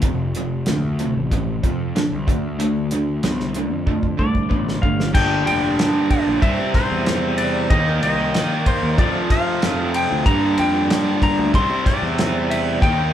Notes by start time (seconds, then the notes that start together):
0.02 F1 F2 C3, kick, closed hi-hat
0.35 F2 C3, closed hi-hat
0.66 D2 F2 D3, snare, closed hi-hat
0.99 F2 C3, closed hi-hat
1.15 A1
1.31 F2 C3, kick, closed hi-hat
1.63 F2 C3, kick, closed hi-hat
1.95 F2 D3, snare, closed hi-hat
2.12 C2
2.27 D2 D3 A3, kick, closed hi-hat
2.59 D3 A3, closed hi-hat
2.91 D3 A3, closed hi-hat
3.23 C2 D3 B3, snare, closed hi-hat
3.40 snare
3.54 D3 A3, closed hi-hat
3.71 F2
3.87 D3 A3, kick
4.03 kick
4.19 C2 D3 A3 D5, kick
4.35 kick
4.50 A1 D3 B3, kick
4.69 snare
4.82 G1 D3 A3 F5, kick
5.00 snare
5.13 G1 G2 D3 G3 A#3 G4 D5 G5, kick, crash
5.47 F1 G5, ride
5.79 snare, ride
6.11 D5, kick, ride
6.27 A#1
6.40 C2 C3 G3 C4 G4 E5, kick, ride
6.60 C3
6.74 C5, kick, snare, ride
6.91 E2
7.06 snare, ride
7.38 D5, ride
7.69 D#2 D#3 A#3 D#4 G4 D#5, kick, ride
8.03 C2 D#5, ride
8.34 snare, ride
8.49 D5
8.66 C5, kick, ride
8.83 D#2
8.97 F2 C3 F3 A3 F4 C5 D5, kick, ride
9.15 F3
9.30 F5, kick, snare, ride
9.62 F2, snare, ride
9.94 G5, ride
10.11 D2
10.25 G2 D3 G3 A#3 G4 D5 A#5, kick, ride
10.58 F2 G5, ride
10.90 snare, ride
11.22 A#5, kick, ride
11.39 D2
11.53 C2 C3 G3 C4 G4 E5 C6, kick, ride
11.70 C3
11.86 D5, kick, snare, ride
12.02 E2
12.18 snare, ride
12.50 E5, ride
12.81 D#2 D#3 A#3 D#4 G4 G5, kick, ride